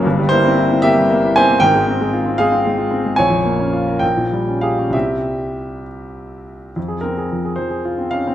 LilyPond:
\new Staff \with { instrumentName = "Grand piano" } { \time 6/8 \key f \minor \tempo 4. = 73 << { r8 <e' c''>4 <g' e''>4 <c'' aes''>8 | <bes' g''>4. <aes' f''>4. | <des'' aes''>4. <bes' g''>4 <aes' f''>8 | <g' e''>4. r4. |
r8 bes'4 c''4 f''8 | } \\ { <g,, g,>16 g16 bes16 c'16 e'16 c'16 bes16 g16 bes16 e'16 c'16 bes16 | <aes,, aes,>16 aes16 c'16 aes16 f'16 c'16 aes16 c'16 aes16 f'16 c'16 aes16 | bes,,16 f,16 bes16 des'16 f'16 bes'16 bes,,16 bes,16 g16 des'16 g'16 des'16 | <c, g c'>2. |
f,16 aes'16 c'16 aes'16 f16 aes'16 f16 aes'16 f'16 c'16 des'16 c'16 | } >> }